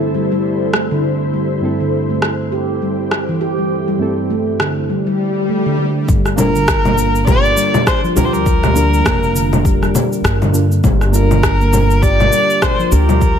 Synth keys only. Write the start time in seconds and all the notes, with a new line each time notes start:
Already playing: G2 A3 C4 E4 A4
1.60 G2 A3 C4 E4
1.65 A4
3.98 G2 A3 C4 E4
4.02 A4
6.36 A#3 D4 F4
6.40 A#4
8.15 A#3 D4 F4 A#4
8.73 A#3 D4 F4
8.78 A#4
10.53 A#3 D4 F4 A#4
11.11 A#3 D4 F4
11.15 A#4
12.91 A#3 D4 F4 A#4